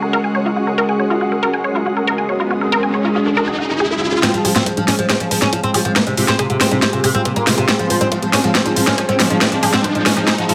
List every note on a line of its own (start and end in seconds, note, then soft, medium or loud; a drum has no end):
0.00 4.22 G#3 medium
0.00 4.23 C#4 medium
0.00 4.23 F#4 medium
0.00 4.22 G#4 medium
0.00 0.07 A#4 medium
0.00 4.23 F#5 medium
0.00 1.48 C#6 medium
0.13 0.17 A#4 loud
0.24 0.27 G#5 medium
0.35 0.41 C#5 medium
0.46 0.48 F4 medium
0.56 0.59 F#4 medium
0.67 0.71 A#4 medium
0.78 0.82 A#4 loud
0.78 riser medium
0.89 0.91 G#5 medium
1.00 1.06 C#5 medium
1.10 1.13 F4 medium
1.21 1.24 F#4 medium
1.32 1.36 A#4 medium
1.32 5.67 D#6 medium
1.43 1.47 A#4 loud
1.53 1.56 G#5 medium
1.64 1.71 C#5 medium
1.75 1.78 F4 medium
1.86 1.88 F#4 medium
1.97 2.01 A#4 medium
2.07 2.12 A#4 medium
2.18 2.21 G#5 medium
2.29 2.35 C#5 medium
2.40 2.42 F4 medium
2.51 2.53 F#4 medium
2.61 2.66 A#4 medium
2.72 2.76 A#4 loud
2.83 2.86 G#5 medium
2.94 3.00 C#5 medium
3.05 3.07 F4 medium
3.15 3.18 F#4 medium
3.26 3.30 A#4 medium
3.37 3.41 A#4 loud
3.48 3.50 G#5 medium
3.58 3.65 F#5 medium
3.69 3.74 G#4 medium
3.80 3.87 G#4 loud
3.91 3.97 A#4 medium
4.02 4.08 F#4 medium
4.12 4.19 F#4 medium
4.23 10.54 G#3 medium
4.23 10.54 C4 medium
4.23 4.29 C4 loud
4.23 4.26 F4 medium
4.23 10.54 G#4 medium
4.23 kick loud
4.23 snare soft
4.23 closed hi-hat medium
4.23 riser medium
4.34 4.40 F3 medium
4.34 4.38 G#4 medium
4.34 closed hi-hat medium
4.45 4.51 F3 medium
4.45 10.54 F4 medium
4.45 4.49 G#4 loud
4.45 open hi-hat loud
4.56 4.61 C4 medium
4.56 4.58 F#5 medium
4.56 snare soft
4.56 closed hi-hat medium
4.66 4.72 F3 medium
4.66 4.73 C5 medium
4.66 kick loud
4.66 closed hi-hat medium
4.77 4.83 F3 medium
4.77 4.80 D#4 medium
4.77 closed hi-hat medium
4.88 4.94 C#4 medium
4.88 4.91 F4 medium
4.88 snare soft
4.88 open hi-hat loud
4.99 5.04 F3 medium
4.99 5.03 G#4 medium
4.99 8.43 F5 medium
4.99 closed hi-hat medium
5.10 5.15 C4 medium
5.10 5.14 G#4 loud
5.10 kick loud
5.10 snare soft
5.10 closed hi-hat medium
5.20 5.26 F3 medium
5.20 5.23 F#5 medium
5.20 closed hi-hat medium
5.31 5.37 F3 medium
5.31 5.38 C5 medium
5.31 open hi-hat loud
5.42 5.48 C#4 medium
5.42 5.45 D#4 medium
5.42 snare soft
5.42 closed hi-hat medium
5.53 5.58 F3 medium
5.53 5.55 F4 medium
5.53 kick loud
5.53 closed hi-hat medium
5.63 5.69 C4 medium
5.63 5.68 G#4 medium
5.63 closed hi-hat medium
5.74 5.80 F3 medium
5.74 5.79 G#4 loud
5.74 open hi-hat loud
5.85 5.91 F3 medium
5.85 5.88 F#5 medium
5.85 10.54 C6 medium
5.85 closed hi-hat medium
5.96 6.02 A#3 loud
5.96 6.02 C5 medium
5.96 kick loud
5.96 snare medium
5.96 closed hi-hat medium
6.07 6.12 C3 medium
6.07 6.09 D#4 medium
6.07 closed hi-hat medium
6.17 6.23 C3 medium
6.17 6.20 F4 medium
6.17 open hi-hat loud
6.28 6.34 C4 medium
6.28 6.33 G#4 medium
6.28 snare soft
6.28 closed hi-hat medium
6.39 6.45 C3 medium
6.39 6.43 G#4 loud
6.39 kick loud
6.39 closed hi-hat medium
6.50 6.56 C3 medium
6.50 6.52 F#5 medium
6.50 closed hi-hat soft
6.61 6.66 C4 medium
6.61 6.67 C5 medium
6.61 snare medium
6.61 open hi-hat loud
6.71 6.77 C3 medium
6.71 6.74 D#4 medium
6.71 closed hi-hat medium
6.82 6.88 C4 medium
6.82 6.85 F4 medium
6.82 kick loud
6.82 snare medium
6.82 closed hi-hat medium
6.93 6.99 C3 medium
6.93 6.97 G#4 medium
6.93 closed hi-hat medium
7.04 7.09 C3 medium
7.04 7.08 G#4 loud
7.04 open hi-hat loud
7.15 7.20 C4 medium
7.15 7.17 F#5 medium
7.15 closed hi-hat medium
7.25 7.31 C3 medium
7.25 7.32 C5 medium
7.25 kick loud
7.25 closed hi-hat medium
7.36 7.42 A#3 medium
7.36 7.39 D#4 medium
7.36 closed hi-hat medium
7.47 7.53 C3 medium
7.47 7.50 F4 medium
7.47 snare medium
7.47 open hi-hat loud
7.58 7.63 C3 medium
7.58 7.62 G#4 medium
7.58 closed hi-hat medium
7.69 7.74 C4 loud
7.69 7.73 G#4 loud
7.69 kick loud
7.69 snare medium
7.69 closed hi-hat medium
7.79 7.85 F3 medium
7.79 7.82 F#5 medium
7.79 closed hi-hat soft
7.90 7.96 F3 medium
7.90 7.97 C5 medium
7.90 open hi-hat loud
8.01 8.07 C4 medium
8.01 8.04 D#4 medium
8.01 closed hi-hat medium
8.12 8.17 F3 medium
8.12 8.14 F4 medium
8.12 kick loud
8.12 closed hi-hat medium
8.22 8.28 F3 medium
8.22 8.27 G#4 medium
8.22 closed hi-hat medium
8.30 8.39 C#4 medium
8.30 8.38 G#4 loud
8.30 10.54 D#5 medium
8.30 snare medium
8.30 open hi-hat loud
8.44 8.50 F3 medium
8.44 8.47 F#5 medium
8.44 closed hi-hat medium
8.55 8.61 C4 medium
8.55 8.61 C5 medium
8.55 kick loud
8.55 snare medium
8.55 closed hi-hat medium
8.66 8.71 F3 medium
8.66 8.68 D#4 medium
8.66 closed hi-hat medium
8.76 8.82 F3 medium
8.76 8.79 F4 medium
8.76 open hi-hat loud
8.87 8.93 C#4 medium
8.87 8.92 G#4 medium
8.87 snare medium
8.98 9.04 F3 medium
8.98 9.02 G#4 loud
8.98 kick loud
8.98 closed hi-hat medium
9.09 9.15 C4 loud
9.09 9.11 F#5 medium
9.09 closed hi-hat soft
9.20 9.25 F3 medium
9.20 9.26 C5 medium
9.20 snare medium
9.20 open hi-hat loud
9.30 9.36 F3 medium
9.30 9.33 D#4 medium
9.30 closed hi-hat medium
9.41 9.47 C4 loud
9.41 9.44 F4 medium
9.41 kick loud
9.41 snare medium
9.41 closed hi-hat medium
9.52 9.58 F3 medium
9.52 9.56 G#4 medium
9.52 closed hi-hat soft
9.63 9.68 F3 medium
9.63 9.67 G#4 loud
9.63 open hi-hat loud
9.74 9.79 C4 medium
9.74 9.76 F#5 medium
9.74 snare medium
9.84 9.90 F3 medium
9.84 9.91 C5 medium
9.84 kick loud
9.84 closed hi-hat medium
9.95 10.01 F3 medium
9.95 9.98 D#4 medium
9.95 closed hi-hat soft
10.06 10.12 C#4 medium
10.06 10.09 F4 medium
10.06 snare medium
10.06 open hi-hat loud
10.17 10.22 F3 medium
10.17 10.21 G#4 medium
10.17 closed hi-hat medium
10.27 10.33 C4 medium
10.27 10.32 G#4 loud
10.27 kick loud
10.27 snare medium
10.27 closed hi-hat medium
10.38 10.44 F3 medium
10.38 10.41 F#5 medium
10.38 closed hi-hat medium
10.49 10.54 F3 medium
10.49 10.53 F4 medium
10.49 open hi-hat loud